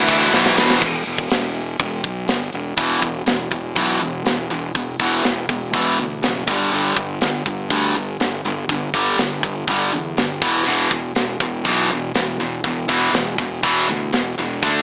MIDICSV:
0, 0, Header, 1, 6, 480
1, 0, Start_track
1, 0, Key_signature, 1, "minor"
1, 0, Tempo, 493016
1, 801, Time_signature, 4, 2, 24, 8
1, 14429, End_track
2, 0, Start_track
2, 0, Title_t, "Lead electric guitar"
2, 0, Program_c, 0, 29
2, 0, Note_on_c, 0, 76, 102
2, 293, Note_off_c, 0, 76, 0
2, 14429, End_track
3, 0, Start_track
3, 0, Title_t, "Lead electric guitar"
3, 0, Program_c, 1, 29
3, 0, Note_on_c, 1, 64, 71
3, 295, Note_off_c, 1, 64, 0
3, 14429, End_track
4, 0, Start_track
4, 0, Title_t, "Distorted electric guitar"
4, 0, Program_c, 2, 30
4, 80, Note_on_c, 2, 40, 81
4, 85, Note_on_c, 2, 47, 84
4, 90, Note_on_c, 2, 52, 93
4, 310, Note_off_c, 2, 40, 0
4, 318, Note_off_c, 2, 47, 0
4, 321, Note_on_c, 2, 40, 82
4, 322, Note_off_c, 2, 52, 0
4, 330, Note_on_c, 2, 47, 83
4, 334, Note_on_c, 2, 52, 84
4, 543, Note_off_c, 2, 40, 0
4, 552, Note_off_c, 2, 47, 0
4, 554, Note_on_c, 2, 40, 91
4, 555, Note_off_c, 2, 52, 0
4, 563, Note_on_c, 2, 47, 94
4, 567, Note_on_c, 2, 52, 91
4, 783, Note_off_c, 2, 40, 0
4, 787, Note_off_c, 2, 47, 0
4, 789, Note_off_c, 2, 52, 0
4, 2695, Note_on_c, 2, 40, 75
4, 2706, Note_on_c, 2, 47, 82
4, 2710, Note_on_c, 2, 52, 83
4, 2927, Note_off_c, 2, 40, 0
4, 2933, Note_off_c, 2, 47, 0
4, 2935, Note_off_c, 2, 52, 0
4, 2940, Note_on_c, 2, 40, 61
4, 2947, Note_on_c, 2, 47, 62
4, 3160, Note_off_c, 2, 40, 0
4, 3163, Note_off_c, 2, 47, 0
4, 3176, Note_on_c, 2, 40, 58
4, 3177, Note_on_c, 2, 47, 75
4, 3398, Note_off_c, 2, 40, 0
4, 3398, Note_off_c, 2, 47, 0
4, 3415, Note_on_c, 2, 40, 56
4, 3421, Note_on_c, 2, 47, 58
4, 3637, Note_off_c, 2, 40, 0
4, 3640, Note_off_c, 2, 47, 0
4, 3657, Note_on_c, 2, 40, 78
4, 3663, Note_on_c, 2, 47, 83
4, 3669, Note_on_c, 2, 52, 92
4, 3887, Note_off_c, 2, 40, 0
4, 3890, Note_off_c, 2, 47, 0
4, 3893, Note_off_c, 2, 52, 0
4, 3899, Note_on_c, 2, 40, 59
4, 3905, Note_on_c, 2, 47, 68
4, 4118, Note_off_c, 2, 40, 0
4, 4121, Note_off_c, 2, 47, 0
4, 4148, Note_on_c, 2, 40, 62
4, 4149, Note_on_c, 2, 47, 65
4, 4363, Note_off_c, 2, 40, 0
4, 4363, Note_off_c, 2, 47, 0
4, 4384, Note_on_c, 2, 40, 59
4, 4386, Note_on_c, 2, 47, 68
4, 4600, Note_off_c, 2, 40, 0
4, 4602, Note_off_c, 2, 47, 0
4, 4625, Note_on_c, 2, 40, 64
4, 4629, Note_on_c, 2, 47, 76
4, 4841, Note_off_c, 2, 40, 0
4, 4843, Note_off_c, 2, 47, 0
4, 4867, Note_on_c, 2, 40, 74
4, 4873, Note_on_c, 2, 47, 88
4, 4879, Note_on_c, 2, 52, 83
4, 5092, Note_off_c, 2, 40, 0
4, 5095, Note_off_c, 2, 47, 0
4, 5097, Note_off_c, 2, 52, 0
4, 5107, Note_on_c, 2, 40, 67
4, 5111, Note_on_c, 2, 47, 76
4, 5322, Note_off_c, 2, 40, 0
4, 5324, Note_off_c, 2, 47, 0
4, 5349, Note_on_c, 2, 40, 59
4, 5349, Note_on_c, 2, 47, 62
4, 5563, Note_off_c, 2, 40, 0
4, 5563, Note_off_c, 2, 47, 0
4, 5583, Note_on_c, 2, 40, 80
4, 5589, Note_on_c, 2, 47, 95
4, 5593, Note_on_c, 2, 52, 88
4, 5809, Note_off_c, 2, 40, 0
4, 5813, Note_off_c, 2, 47, 0
4, 5814, Note_off_c, 2, 52, 0
4, 5831, Note_on_c, 2, 40, 61
4, 5831, Note_on_c, 2, 47, 63
4, 6044, Note_off_c, 2, 40, 0
4, 6044, Note_off_c, 2, 47, 0
4, 6065, Note_on_c, 2, 40, 63
4, 6071, Note_on_c, 2, 47, 75
4, 6281, Note_off_c, 2, 40, 0
4, 6284, Note_off_c, 2, 47, 0
4, 6300, Note_on_c, 2, 43, 85
4, 6309, Note_on_c, 2, 50, 85
4, 6311, Note_on_c, 2, 55, 92
4, 6528, Note_off_c, 2, 43, 0
4, 6533, Note_off_c, 2, 50, 0
4, 6533, Note_off_c, 2, 55, 0
4, 6544, Note_on_c, 2, 43, 85
4, 6550, Note_on_c, 2, 50, 85
4, 6554, Note_on_c, 2, 55, 90
4, 6770, Note_off_c, 2, 43, 0
4, 6773, Note_off_c, 2, 50, 0
4, 6775, Note_off_c, 2, 55, 0
4, 6786, Note_on_c, 2, 43, 69
4, 6788, Note_on_c, 2, 50, 64
4, 7002, Note_off_c, 2, 43, 0
4, 7002, Note_off_c, 2, 50, 0
4, 7025, Note_on_c, 2, 43, 66
4, 7029, Note_on_c, 2, 50, 74
4, 7241, Note_off_c, 2, 43, 0
4, 7243, Note_off_c, 2, 50, 0
4, 7266, Note_on_c, 2, 43, 59
4, 7271, Note_on_c, 2, 50, 66
4, 7482, Note_off_c, 2, 43, 0
4, 7484, Note_off_c, 2, 50, 0
4, 7501, Note_on_c, 2, 43, 77
4, 7508, Note_on_c, 2, 50, 84
4, 7516, Note_on_c, 2, 55, 88
4, 7729, Note_off_c, 2, 43, 0
4, 7732, Note_off_c, 2, 50, 0
4, 7736, Note_off_c, 2, 55, 0
4, 7745, Note_on_c, 2, 43, 59
4, 7747, Note_on_c, 2, 50, 68
4, 7962, Note_off_c, 2, 43, 0
4, 7962, Note_off_c, 2, 50, 0
4, 7986, Note_on_c, 2, 43, 67
4, 7989, Note_on_c, 2, 50, 74
4, 8202, Note_off_c, 2, 43, 0
4, 8204, Note_off_c, 2, 50, 0
4, 8229, Note_on_c, 2, 43, 67
4, 8232, Note_on_c, 2, 50, 69
4, 8444, Note_off_c, 2, 43, 0
4, 8445, Note_off_c, 2, 50, 0
4, 8464, Note_on_c, 2, 43, 67
4, 8470, Note_on_c, 2, 50, 71
4, 8681, Note_off_c, 2, 43, 0
4, 8685, Note_off_c, 2, 50, 0
4, 8703, Note_on_c, 2, 43, 88
4, 8707, Note_on_c, 2, 50, 89
4, 8712, Note_on_c, 2, 55, 86
4, 8931, Note_off_c, 2, 43, 0
4, 8933, Note_off_c, 2, 50, 0
4, 8935, Note_off_c, 2, 55, 0
4, 8944, Note_on_c, 2, 50, 78
4, 8946, Note_on_c, 2, 43, 71
4, 9162, Note_off_c, 2, 50, 0
4, 9163, Note_off_c, 2, 43, 0
4, 9185, Note_on_c, 2, 43, 63
4, 9186, Note_on_c, 2, 50, 66
4, 9403, Note_off_c, 2, 43, 0
4, 9403, Note_off_c, 2, 50, 0
4, 9419, Note_on_c, 2, 43, 81
4, 9427, Note_on_c, 2, 50, 89
4, 9430, Note_on_c, 2, 55, 96
4, 9649, Note_off_c, 2, 43, 0
4, 9653, Note_off_c, 2, 50, 0
4, 9655, Note_off_c, 2, 55, 0
4, 9660, Note_on_c, 2, 43, 63
4, 9663, Note_on_c, 2, 50, 72
4, 9881, Note_off_c, 2, 43, 0
4, 9882, Note_off_c, 2, 50, 0
4, 9906, Note_on_c, 2, 43, 61
4, 9913, Note_on_c, 2, 50, 71
4, 10124, Note_off_c, 2, 43, 0
4, 10127, Note_off_c, 2, 50, 0
4, 10144, Note_on_c, 2, 40, 81
4, 10146, Note_on_c, 2, 47, 78
4, 10156, Note_on_c, 2, 52, 80
4, 10373, Note_off_c, 2, 40, 0
4, 10374, Note_off_c, 2, 47, 0
4, 10379, Note_off_c, 2, 52, 0
4, 10389, Note_on_c, 2, 40, 74
4, 10392, Note_on_c, 2, 47, 78
4, 10396, Note_on_c, 2, 52, 89
4, 10609, Note_off_c, 2, 40, 0
4, 10617, Note_off_c, 2, 47, 0
4, 10619, Note_off_c, 2, 52, 0
4, 10621, Note_on_c, 2, 40, 63
4, 10631, Note_on_c, 2, 47, 69
4, 10842, Note_off_c, 2, 40, 0
4, 10847, Note_off_c, 2, 47, 0
4, 10865, Note_on_c, 2, 40, 70
4, 10868, Note_on_c, 2, 47, 72
4, 11085, Note_off_c, 2, 40, 0
4, 11086, Note_off_c, 2, 47, 0
4, 11110, Note_on_c, 2, 40, 61
4, 11116, Note_on_c, 2, 47, 67
4, 11328, Note_off_c, 2, 40, 0
4, 11330, Note_off_c, 2, 47, 0
4, 11344, Note_on_c, 2, 40, 79
4, 11352, Note_on_c, 2, 47, 97
4, 11356, Note_on_c, 2, 52, 100
4, 11575, Note_off_c, 2, 40, 0
4, 11579, Note_off_c, 2, 47, 0
4, 11581, Note_off_c, 2, 52, 0
4, 11594, Note_on_c, 2, 40, 59
4, 11596, Note_on_c, 2, 47, 64
4, 11811, Note_off_c, 2, 40, 0
4, 11812, Note_off_c, 2, 47, 0
4, 11834, Note_on_c, 2, 40, 63
4, 11839, Note_on_c, 2, 47, 67
4, 12051, Note_off_c, 2, 40, 0
4, 12054, Note_off_c, 2, 47, 0
4, 12072, Note_on_c, 2, 40, 59
4, 12074, Note_on_c, 2, 47, 71
4, 12291, Note_off_c, 2, 40, 0
4, 12292, Note_off_c, 2, 47, 0
4, 12309, Note_on_c, 2, 40, 63
4, 12310, Note_on_c, 2, 47, 75
4, 12530, Note_off_c, 2, 40, 0
4, 12530, Note_off_c, 2, 47, 0
4, 12542, Note_on_c, 2, 40, 87
4, 12550, Note_on_c, 2, 47, 81
4, 12558, Note_on_c, 2, 52, 92
4, 12777, Note_off_c, 2, 40, 0
4, 12780, Note_off_c, 2, 47, 0
4, 12785, Note_off_c, 2, 52, 0
4, 12791, Note_on_c, 2, 40, 74
4, 12793, Note_on_c, 2, 47, 79
4, 13012, Note_off_c, 2, 40, 0
4, 13013, Note_off_c, 2, 47, 0
4, 13034, Note_on_c, 2, 40, 57
4, 13034, Note_on_c, 2, 47, 70
4, 13254, Note_off_c, 2, 40, 0
4, 13254, Note_off_c, 2, 47, 0
4, 13271, Note_on_c, 2, 40, 83
4, 13277, Note_on_c, 2, 47, 86
4, 13282, Note_on_c, 2, 52, 93
4, 13503, Note_off_c, 2, 40, 0
4, 13506, Note_off_c, 2, 47, 0
4, 13508, Note_off_c, 2, 52, 0
4, 13521, Note_on_c, 2, 40, 62
4, 13523, Note_on_c, 2, 47, 70
4, 13739, Note_off_c, 2, 40, 0
4, 13740, Note_off_c, 2, 47, 0
4, 13752, Note_on_c, 2, 40, 66
4, 13756, Note_on_c, 2, 47, 74
4, 13976, Note_off_c, 2, 40, 0
4, 13977, Note_off_c, 2, 47, 0
4, 13999, Note_on_c, 2, 40, 65
4, 14005, Note_on_c, 2, 47, 74
4, 14220, Note_off_c, 2, 40, 0
4, 14222, Note_off_c, 2, 47, 0
4, 14244, Note_on_c, 2, 50, 83
4, 14248, Note_on_c, 2, 57, 92
4, 14254, Note_on_c, 2, 62, 83
4, 14429, Note_off_c, 2, 50, 0
4, 14429, Note_off_c, 2, 57, 0
4, 14429, Note_off_c, 2, 62, 0
4, 14429, End_track
5, 0, Start_track
5, 0, Title_t, "Fingered electric bass"
5, 0, Program_c, 3, 33
5, 0, Note_on_c, 3, 38, 99
5, 265, Note_off_c, 3, 38, 0
5, 335, Note_on_c, 3, 35, 89
5, 540, Note_off_c, 3, 35, 0
5, 576, Note_on_c, 3, 28, 92
5, 780, Note_off_c, 3, 28, 0
5, 800, Note_on_c, 3, 28, 90
5, 1022, Note_off_c, 3, 28, 0
5, 1041, Note_on_c, 3, 28, 89
5, 1262, Note_off_c, 3, 28, 0
5, 1280, Note_on_c, 3, 28, 82
5, 1723, Note_off_c, 3, 28, 0
5, 1748, Note_on_c, 3, 28, 93
5, 1973, Note_off_c, 3, 28, 0
5, 1987, Note_on_c, 3, 35, 85
5, 2212, Note_off_c, 3, 35, 0
5, 2217, Note_on_c, 3, 31, 83
5, 2446, Note_off_c, 3, 31, 0
5, 2471, Note_on_c, 3, 28, 85
5, 2693, Note_off_c, 3, 28, 0
5, 2702, Note_on_c, 3, 28, 84
5, 2933, Note_off_c, 3, 28, 0
5, 2945, Note_on_c, 3, 28, 74
5, 3174, Note_off_c, 3, 28, 0
5, 3181, Note_on_c, 3, 28, 75
5, 3412, Note_off_c, 3, 28, 0
5, 3424, Note_on_c, 3, 28, 76
5, 3653, Note_off_c, 3, 28, 0
5, 3664, Note_on_c, 3, 35, 76
5, 3893, Note_off_c, 3, 35, 0
5, 3903, Note_on_c, 3, 28, 78
5, 4132, Note_off_c, 3, 28, 0
5, 4152, Note_on_c, 3, 28, 74
5, 4377, Note_off_c, 3, 28, 0
5, 4388, Note_on_c, 3, 28, 79
5, 4615, Note_off_c, 3, 28, 0
5, 4621, Note_on_c, 3, 28, 83
5, 4851, Note_off_c, 3, 28, 0
5, 4863, Note_on_c, 3, 28, 75
5, 5092, Note_off_c, 3, 28, 0
5, 5114, Note_on_c, 3, 28, 79
5, 5338, Note_off_c, 3, 28, 0
5, 5345, Note_on_c, 3, 28, 76
5, 5573, Note_off_c, 3, 28, 0
5, 5590, Note_on_c, 3, 28, 78
5, 5815, Note_off_c, 3, 28, 0
5, 5838, Note_on_c, 3, 38, 77
5, 6054, Note_off_c, 3, 38, 0
5, 6060, Note_on_c, 3, 30, 79
5, 6290, Note_off_c, 3, 30, 0
5, 6305, Note_on_c, 3, 31, 81
5, 6533, Note_off_c, 3, 31, 0
5, 6554, Note_on_c, 3, 31, 89
5, 6777, Note_off_c, 3, 31, 0
5, 6782, Note_on_c, 3, 31, 79
5, 7011, Note_off_c, 3, 31, 0
5, 7036, Note_on_c, 3, 31, 77
5, 7254, Note_off_c, 3, 31, 0
5, 7260, Note_on_c, 3, 31, 77
5, 7490, Note_off_c, 3, 31, 0
5, 7503, Note_on_c, 3, 38, 82
5, 7732, Note_off_c, 3, 38, 0
5, 7755, Note_on_c, 3, 31, 81
5, 7979, Note_off_c, 3, 31, 0
5, 7991, Note_on_c, 3, 31, 73
5, 8216, Note_off_c, 3, 31, 0
5, 8228, Note_on_c, 3, 31, 83
5, 8455, Note_off_c, 3, 31, 0
5, 8462, Note_on_c, 3, 31, 89
5, 8692, Note_off_c, 3, 31, 0
5, 8703, Note_on_c, 3, 31, 80
5, 8933, Note_off_c, 3, 31, 0
5, 8948, Note_on_c, 3, 31, 77
5, 9176, Note_off_c, 3, 31, 0
5, 9187, Note_on_c, 3, 31, 79
5, 9413, Note_off_c, 3, 31, 0
5, 9419, Note_on_c, 3, 31, 76
5, 9651, Note_off_c, 3, 31, 0
5, 9677, Note_on_c, 3, 40, 73
5, 9901, Note_off_c, 3, 40, 0
5, 9911, Note_on_c, 3, 31, 75
5, 10143, Note_off_c, 3, 31, 0
5, 10143, Note_on_c, 3, 28, 80
5, 10374, Note_off_c, 3, 28, 0
5, 10387, Note_on_c, 3, 28, 82
5, 10617, Note_off_c, 3, 28, 0
5, 10624, Note_on_c, 3, 28, 80
5, 10856, Note_off_c, 3, 28, 0
5, 10867, Note_on_c, 3, 28, 77
5, 11095, Note_off_c, 3, 28, 0
5, 11101, Note_on_c, 3, 28, 79
5, 11335, Note_off_c, 3, 28, 0
5, 11347, Note_on_c, 3, 35, 83
5, 11578, Note_off_c, 3, 35, 0
5, 11588, Note_on_c, 3, 28, 79
5, 11820, Note_off_c, 3, 28, 0
5, 11832, Note_on_c, 3, 28, 75
5, 12062, Note_off_c, 3, 28, 0
5, 12077, Note_on_c, 3, 28, 78
5, 12297, Note_off_c, 3, 28, 0
5, 12303, Note_on_c, 3, 28, 86
5, 12538, Note_off_c, 3, 28, 0
5, 12554, Note_on_c, 3, 28, 82
5, 12778, Note_off_c, 3, 28, 0
5, 12784, Note_on_c, 3, 28, 81
5, 13020, Note_off_c, 3, 28, 0
5, 13029, Note_on_c, 3, 28, 81
5, 13263, Note_off_c, 3, 28, 0
5, 13277, Note_on_c, 3, 28, 82
5, 13508, Note_off_c, 3, 28, 0
5, 13527, Note_on_c, 3, 38, 81
5, 13754, Note_off_c, 3, 38, 0
5, 13761, Note_on_c, 3, 28, 78
5, 13992, Note_off_c, 3, 28, 0
5, 14008, Note_on_c, 3, 28, 86
5, 14236, Note_off_c, 3, 28, 0
5, 14243, Note_on_c, 3, 38, 91
5, 14429, Note_off_c, 3, 38, 0
5, 14429, End_track
6, 0, Start_track
6, 0, Title_t, "Drums"
6, 81, Note_on_c, 9, 49, 71
6, 83, Note_on_c, 9, 36, 87
6, 179, Note_off_c, 9, 49, 0
6, 181, Note_off_c, 9, 36, 0
6, 329, Note_on_c, 9, 38, 69
6, 427, Note_off_c, 9, 38, 0
6, 447, Note_on_c, 9, 38, 75
6, 544, Note_off_c, 9, 38, 0
6, 567, Note_on_c, 9, 38, 93
6, 665, Note_off_c, 9, 38, 0
6, 683, Note_on_c, 9, 38, 90
6, 781, Note_off_c, 9, 38, 0
6, 797, Note_on_c, 9, 36, 107
6, 797, Note_on_c, 9, 57, 115
6, 894, Note_off_c, 9, 36, 0
6, 894, Note_off_c, 9, 57, 0
6, 1031, Note_on_c, 9, 46, 58
6, 1129, Note_off_c, 9, 46, 0
6, 1153, Note_on_c, 9, 36, 88
6, 1250, Note_off_c, 9, 36, 0
6, 1271, Note_on_c, 9, 46, 76
6, 1281, Note_on_c, 9, 38, 113
6, 1368, Note_off_c, 9, 46, 0
6, 1378, Note_off_c, 9, 38, 0
6, 1507, Note_on_c, 9, 46, 58
6, 1604, Note_off_c, 9, 46, 0
6, 1748, Note_on_c, 9, 46, 73
6, 1749, Note_on_c, 9, 36, 105
6, 1845, Note_off_c, 9, 46, 0
6, 1846, Note_off_c, 9, 36, 0
6, 1984, Note_on_c, 9, 46, 54
6, 1987, Note_on_c, 9, 36, 86
6, 2081, Note_off_c, 9, 46, 0
6, 2084, Note_off_c, 9, 36, 0
6, 2220, Note_on_c, 9, 46, 68
6, 2230, Note_on_c, 9, 38, 104
6, 2317, Note_off_c, 9, 46, 0
6, 2327, Note_off_c, 9, 38, 0
6, 2461, Note_on_c, 9, 46, 47
6, 2558, Note_off_c, 9, 46, 0
6, 2703, Note_on_c, 9, 36, 96
6, 2703, Note_on_c, 9, 46, 59
6, 2800, Note_off_c, 9, 36, 0
6, 2801, Note_off_c, 9, 46, 0
6, 2942, Note_on_c, 9, 46, 45
6, 2943, Note_on_c, 9, 36, 75
6, 3039, Note_off_c, 9, 46, 0
6, 3040, Note_off_c, 9, 36, 0
6, 3181, Note_on_c, 9, 46, 68
6, 3190, Note_on_c, 9, 38, 103
6, 3278, Note_off_c, 9, 46, 0
6, 3288, Note_off_c, 9, 38, 0
6, 3419, Note_on_c, 9, 46, 47
6, 3422, Note_on_c, 9, 36, 77
6, 3516, Note_off_c, 9, 46, 0
6, 3520, Note_off_c, 9, 36, 0
6, 3662, Note_on_c, 9, 46, 66
6, 3664, Note_on_c, 9, 36, 76
6, 3759, Note_off_c, 9, 46, 0
6, 3761, Note_off_c, 9, 36, 0
6, 3901, Note_on_c, 9, 46, 50
6, 3999, Note_off_c, 9, 46, 0
6, 4143, Note_on_c, 9, 46, 60
6, 4153, Note_on_c, 9, 38, 97
6, 4241, Note_off_c, 9, 46, 0
6, 4250, Note_off_c, 9, 38, 0
6, 4387, Note_on_c, 9, 46, 46
6, 4484, Note_off_c, 9, 46, 0
6, 4622, Note_on_c, 9, 46, 63
6, 4625, Note_on_c, 9, 36, 101
6, 4720, Note_off_c, 9, 46, 0
6, 4723, Note_off_c, 9, 36, 0
6, 4862, Note_on_c, 9, 46, 44
6, 4865, Note_on_c, 9, 36, 69
6, 4959, Note_off_c, 9, 46, 0
6, 4962, Note_off_c, 9, 36, 0
6, 5103, Note_on_c, 9, 46, 62
6, 5113, Note_on_c, 9, 38, 102
6, 5200, Note_off_c, 9, 46, 0
6, 5210, Note_off_c, 9, 38, 0
6, 5345, Note_on_c, 9, 36, 78
6, 5347, Note_on_c, 9, 46, 46
6, 5443, Note_off_c, 9, 36, 0
6, 5445, Note_off_c, 9, 46, 0
6, 5582, Note_on_c, 9, 46, 58
6, 5585, Note_on_c, 9, 36, 81
6, 5680, Note_off_c, 9, 46, 0
6, 5682, Note_off_c, 9, 36, 0
6, 5825, Note_on_c, 9, 46, 44
6, 5922, Note_off_c, 9, 46, 0
6, 6065, Note_on_c, 9, 46, 55
6, 6074, Note_on_c, 9, 38, 99
6, 6162, Note_off_c, 9, 46, 0
6, 6172, Note_off_c, 9, 38, 0
6, 6305, Note_on_c, 9, 36, 91
6, 6306, Note_on_c, 9, 46, 44
6, 6402, Note_off_c, 9, 36, 0
6, 6403, Note_off_c, 9, 46, 0
6, 6545, Note_on_c, 9, 46, 57
6, 6642, Note_off_c, 9, 46, 0
6, 6780, Note_on_c, 9, 46, 46
6, 6782, Note_on_c, 9, 36, 76
6, 6878, Note_off_c, 9, 46, 0
6, 6879, Note_off_c, 9, 36, 0
6, 7018, Note_on_c, 9, 46, 65
6, 7028, Note_on_c, 9, 38, 102
6, 7116, Note_off_c, 9, 46, 0
6, 7125, Note_off_c, 9, 38, 0
6, 7262, Note_on_c, 9, 36, 78
6, 7264, Note_on_c, 9, 46, 49
6, 7359, Note_off_c, 9, 36, 0
6, 7361, Note_off_c, 9, 46, 0
6, 7499, Note_on_c, 9, 46, 67
6, 7501, Note_on_c, 9, 36, 83
6, 7596, Note_off_c, 9, 46, 0
6, 7598, Note_off_c, 9, 36, 0
6, 7744, Note_on_c, 9, 46, 50
6, 7841, Note_off_c, 9, 46, 0
6, 7984, Note_on_c, 9, 46, 64
6, 7994, Note_on_c, 9, 38, 96
6, 8081, Note_off_c, 9, 46, 0
6, 8091, Note_off_c, 9, 38, 0
6, 8223, Note_on_c, 9, 46, 45
6, 8321, Note_off_c, 9, 46, 0
6, 8463, Note_on_c, 9, 36, 102
6, 8465, Note_on_c, 9, 46, 67
6, 8560, Note_off_c, 9, 36, 0
6, 8563, Note_off_c, 9, 46, 0
6, 8702, Note_on_c, 9, 36, 74
6, 8703, Note_on_c, 9, 46, 47
6, 8800, Note_off_c, 9, 36, 0
6, 8801, Note_off_c, 9, 46, 0
6, 8939, Note_on_c, 9, 46, 65
6, 8949, Note_on_c, 9, 38, 101
6, 9036, Note_off_c, 9, 46, 0
6, 9046, Note_off_c, 9, 38, 0
6, 9182, Note_on_c, 9, 36, 75
6, 9184, Note_on_c, 9, 46, 49
6, 9280, Note_off_c, 9, 36, 0
6, 9282, Note_off_c, 9, 46, 0
6, 9422, Note_on_c, 9, 36, 81
6, 9422, Note_on_c, 9, 46, 58
6, 9519, Note_off_c, 9, 36, 0
6, 9520, Note_off_c, 9, 46, 0
6, 9663, Note_on_c, 9, 46, 48
6, 9761, Note_off_c, 9, 46, 0
6, 9903, Note_on_c, 9, 46, 58
6, 9913, Note_on_c, 9, 38, 96
6, 10000, Note_off_c, 9, 46, 0
6, 10010, Note_off_c, 9, 38, 0
6, 10142, Note_on_c, 9, 36, 92
6, 10147, Note_on_c, 9, 46, 43
6, 10240, Note_off_c, 9, 36, 0
6, 10245, Note_off_c, 9, 46, 0
6, 10386, Note_on_c, 9, 46, 60
6, 10483, Note_off_c, 9, 46, 0
6, 10622, Note_on_c, 9, 36, 79
6, 10626, Note_on_c, 9, 46, 43
6, 10719, Note_off_c, 9, 36, 0
6, 10723, Note_off_c, 9, 46, 0
6, 10859, Note_on_c, 9, 46, 60
6, 10869, Note_on_c, 9, 38, 108
6, 10956, Note_off_c, 9, 46, 0
6, 10966, Note_off_c, 9, 38, 0
6, 11102, Note_on_c, 9, 36, 79
6, 11104, Note_on_c, 9, 46, 47
6, 11199, Note_off_c, 9, 36, 0
6, 11201, Note_off_c, 9, 46, 0
6, 11342, Note_on_c, 9, 36, 75
6, 11347, Note_on_c, 9, 46, 64
6, 11440, Note_off_c, 9, 36, 0
6, 11444, Note_off_c, 9, 46, 0
6, 11584, Note_on_c, 9, 46, 50
6, 11681, Note_off_c, 9, 46, 0
6, 11824, Note_on_c, 9, 46, 62
6, 11834, Note_on_c, 9, 38, 96
6, 11922, Note_off_c, 9, 46, 0
6, 11931, Note_off_c, 9, 38, 0
6, 12073, Note_on_c, 9, 46, 48
6, 12170, Note_off_c, 9, 46, 0
6, 12307, Note_on_c, 9, 36, 109
6, 12311, Note_on_c, 9, 46, 66
6, 12405, Note_off_c, 9, 36, 0
6, 12408, Note_off_c, 9, 46, 0
6, 12549, Note_on_c, 9, 36, 72
6, 12554, Note_on_c, 9, 46, 46
6, 12647, Note_off_c, 9, 36, 0
6, 12651, Note_off_c, 9, 46, 0
6, 12792, Note_on_c, 9, 46, 69
6, 12801, Note_on_c, 9, 38, 109
6, 12889, Note_off_c, 9, 46, 0
6, 12899, Note_off_c, 9, 38, 0
6, 13030, Note_on_c, 9, 36, 83
6, 13032, Note_on_c, 9, 46, 48
6, 13128, Note_off_c, 9, 36, 0
6, 13130, Note_off_c, 9, 46, 0
6, 13274, Note_on_c, 9, 36, 85
6, 13277, Note_on_c, 9, 46, 66
6, 13371, Note_off_c, 9, 36, 0
6, 13375, Note_off_c, 9, 46, 0
6, 13519, Note_on_c, 9, 46, 50
6, 13617, Note_off_c, 9, 46, 0
6, 13756, Note_on_c, 9, 46, 60
6, 13766, Note_on_c, 9, 38, 102
6, 13854, Note_off_c, 9, 46, 0
6, 13864, Note_off_c, 9, 38, 0
6, 14000, Note_on_c, 9, 46, 45
6, 14098, Note_off_c, 9, 46, 0
6, 14241, Note_on_c, 9, 36, 105
6, 14243, Note_on_c, 9, 46, 59
6, 14339, Note_off_c, 9, 36, 0
6, 14341, Note_off_c, 9, 46, 0
6, 14429, End_track
0, 0, End_of_file